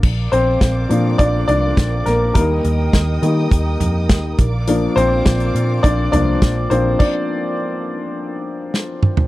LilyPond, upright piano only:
<<
  \new Staff \with { instrumentName = "Upright piano" } { \time 4/4 \key bes \mixolydian \tempo 4 = 103 r8 <c' c''>4. <d' d''>8 <d' d''>4 <bes bes'>8 | bes'2.~ bes'8 r8 | r8 <c' c''>4. <d' d''>8 d''4 <c' c''>8 | <d' d''>2.~ <d' d''>8 r8 | }
  \new Staff \with { instrumentName = "Upright piano" } { \time 4/4 \key bes \mixolydian r4. <f bes d'>4. r4 | <g bes ees'>4. <g bes ees'>8 r2 | <f bes d'>2~ <f bes d'>8 <f bes d'>8 r8 <f bes d'>8~ | <f bes d'>4 r2. | }
>>